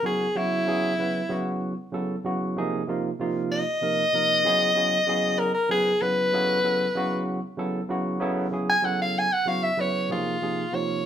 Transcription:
0.03 0.25 C#3 medium
0.03 0.26 F#3 medium
0.03 0.26 B3 medium
0.03 0.26 E4 medium
0.03 0.27 F#4 medium
0.03 0.39 G#4 medium
0.35 0.65 C#3 medium
0.35 0.66 F#3 medium
0.35 0.66 B3 medium
0.35 0.67 E4 medium
0.35 1.59 E4 medium
0.35 0.68 F#4 medium
0.66 0.92 C#3 medium
0.66 0.93 F#3 medium
0.66 0.93 B3 medium
0.66 0.93 E4 medium
0.66 0.93 G#4 medium
0.99 1.20 C#3 medium
0.99 1.20 F#3 medium
0.99 1.21 B3 medium
0.99 1.21 E4 medium
0.99 1.21 B4 medium
1.29 1.72 C#3 medium
1.29 1.73 F#3 medium
1.29 1.73 B3 medium
1.29 1.73 E4 medium
1.29 1.74 F#4 medium
1.92 2.14 C#3 medium
1.92 2.14 F#3 medium
1.92 2.15 B3 medium
1.92 2.15 E4 medium
1.92 2.15 A4 medium
2.24 2.56 C#3 medium
2.24 2.56 F#3 medium
2.24 2.56 B3 medium
2.24 2.57 E4 medium
2.24 2.57 F#4 medium
2.57 2.82 C3 medium
2.57 2.82 F3 medium
2.57 2.82 A#3 medium
2.57 2.82 D#4 medium
2.57 2.82 G#4 loud
2.88 3.09 C3 medium
2.88 3.09 F3 medium
2.88 3.09 A#3 medium
2.88 3.10 D#4 medium
2.88 3.10 F4 medium
3.19 3.62 C3 medium
3.19 3.62 F3 medium
3.19 3.63 A#3 medium
3.19 3.63 D#4 medium
3.19 3.63 F4 medium
3.52 5.41 D#5 loud
3.81 4.03 C3 medium
3.81 4.03 F3 medium
3.81 4.03 A#3 medium
3.81 4.04 D#4 medium
3.81 4.04 A#4 medium
4.13 4.45 C3 medium
4.13 4.45 F3 medium
4.13 4.45 A#3 medium
4.13 4.45 D#4 medium
4.13 4.45 A#4 medium
4.45 4.70 C#3 medium
4.45 4.70 F#3 medium
4.45 4.70 B3 medium
4.45 4.70 E4 medium
4.45 4.71 G#4 loud
4.75 4.97 C#3 medium
4.75 4.97 F#3 medium
4.75 4.97 B3 medium
4.75 4.98 E4 medium
4.75 4.98 G#4 medium
5.07 5.50 C#3 medium
5.07 5.50 F#3 medium
5.07 5.50 B3 medium
5.07 5.51 E4 medium
5.07 5.51 G#4 medium
5.39 5.54 A#4 medium
5.54 5.69 A#4 medium
5.69 5.91 C#3 medium
5.69 5.91 F#3 medium
5.69 5.92 B3 medium
5.69 5.92 E4 medium
5.69 6.03 G#4 loud
5.69 5.92 B4 medium
6.01 6.32 C#3 medium
6.01 6.32 F#3 medium
6.01 6.33 B3 medium
6.01 6.33 E4 medium
6.01 7.24 B4 loud
6.01 6.34 B4 medium
6.33 6.58 C#3 medium
6.33 6.58 F#3 medium
6.33 6.59 B3 medium
6.33 6.59 E4 medium
6.33 6.59 A4 medium
6.63 6.85 C#3 medium
6.63 6.86 F#3 medium
6.63 6.86 B3 medium
6.63 6.86 E4 medium
6.63 6.86 A4 medium
6.95 7.38 C#3 medium
6.95 7.39 F#3 medium
6.95 7.39 B3 medium
6.95 7.39 E4 medium
6.95 7.39 F#4 loud
7.57 7.80 C#3 medium
7.57 7.80 F#3 medium
7.57 7.80 B3 medium
7.57 7.80 E4 medium
7.57 7.80 A4 medium
7.89 8.19 C#3 medium
7.89 8.19 F#3 medium
7.89 8.20 B3 medium
7.89 8.21 E4 medium
7.89 8.22 F#4 medium
8.20 8.46 C#3 medium
8.20 8.46 F#3 medium
8.20 8.46 B3 medium
8.20 8.47 E4 medium
8.20 8.47 A4 medium
8.51 8.74 C#3 medium
8.51 8.74 F#3 medium
8.51 8.74 B3 medium
8.51 8.74 E4 medium
8.51 8.75 G#4 medium
8.69 8.87 G#5 loud
8.82 9.26 C#3 medium
8.82 9.27 F#3 medium
8.82 9.27 B3 medium
8.82 9.27 E4 medium
8.82 9.27 A4 medium
8.82 9.00 F#5 medium
9.02 9.20 F5 loud
9.19 9.34 G#5 medium
9.33 9.50 F#5 medium
9.46 9.68 C#3 medium
9.46 9.68 F#3 medium
9.46 9.69 B3 medium
9.46 9.69 E4 medium
9.46 9.69 F#4 medium
9.46 9.65 F5 loud
9.63 9.82 E5 medium
9.77 10.10 C#3 medium
9.77 10.10 F#3 medium
9.77 10.10 B3 medium
9.77 10.10 E4 medium
9.77 10.11 B4 medium
9.77 10.11 C#5 medium
10.09 10.35 C3 medium
10.09 10.36 F3 medium
10.09 10.36 A#3 medium
10.09 10.36 D#4 medium
10.09 10.76 F4 medium
10.09 10.36 G#4 medium
10.41 10.63 C3 medium
10.41 10.64 F3 medium
10.41 10.64 A#3 medium
10.41 10.64 D#4 medium
10.41 10.64 G#4 medium
10.72 11.06 C3 medium
10.72 11.06 F3 medium
10.72 11.06 A#3 medium
10.72 11.06 D#4 medium
10.72 11.06 F4 medium
10.72 11.06 C#5 medium

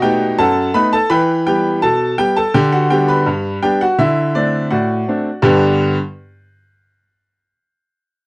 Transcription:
0.00 0.40 B2 loud
0.00 0.22 A3 medium
0.00 0.22 B3 medium
0.00 0.23 D#4 medium
0.00 0.39 F#4 medium
0.00 0.36 G4 medium
0.00 0.39 D#5 medium
0.00 0.40 F#5 loud
0.00 0.38 G5 loud
0.39 0.69 F#2 medium
0.39 0.72 A4 medium
0.39 0.72 F#5 medium
0.39 0.74 A5 loud
0.74 0.94 A3 medium
0.74 0.95 B3 medium
0.74 0.95 D#4 medium
0.74 0.92 B4 loud
0.74 0.92 B5 loud
0.93 1.10 A4 medium
0.93 1.10 A5 loud
1.10 1.41 E3 loud
1.10 1.44 B4 loud
1.10 1.44 G5 medium
1.10 1.46 B5 loud
1.47 1.66 G3 medium
1.47 1.67 B3 medium
1.47 1.80 G4 medium
1.47 1.82 G5 loud
1.82 2.13 B2 medium
1.82 2.16 A4 medium
1.82 2.18 A5 loud
2.18 2.38 G3 medium
2.18 2.38 B3 medium
2.18 2.35 G4 medium
2.18 2.36 G5 loud
2.37 2.54 A4 medium
2.37 2.54 A5 loud
2.54 2.85 D3 loud
2.54 2.71 G4 medium
2.54 2.72 G5 loud
2.72 2.90 F#4 medium
2.72 2.90 F#5 loud
2.90 3.10 G3 soft
2.90 3.10 B3 medium
2.90 3.11 D4 medium
2.90 3.08 G4 medium
2.90 3.08 G5 loud
3.08 3.59 B4 medium
3.08 3.62 B5 loud
3.26 3.57 G2 medium
3.63 3.82 G3 medium
3.63 3.83 B3 medium
3.63 3.83 D4 medium
3.63 3.79 G4 medium
3.63 3.80 G5 loud
3.81 3.98 F#4 medium
3.81 3.99 F#5 loud
3.99 4.29 D3 medium
3.99 4.33 E4 medium
3.99 4.34 E5 loud
4.35 4.55 A3 soft
4.35 4.56 C4 soft
4.35 4.69 D4 medium
4.35 4.70 D5 loud
4.71 5.02 A2 medium
4.71 5.40 F#4 medium
4.71 5.40 D5 medium
4.71 5.43 F#5 medium
5.08 5.28 A3 medium
5.08 5.28 C4 medium
5.08 5.28 D4 medium
5.42 5.83 G2 loud
5.42 5.83 D3 loud
5.42 5.84 B3 medium
5.42 5.84 D4 medium
5.42 5.84 G4 medium
5.42 5.84 B4 loud
5.42 5.84 G5 medium

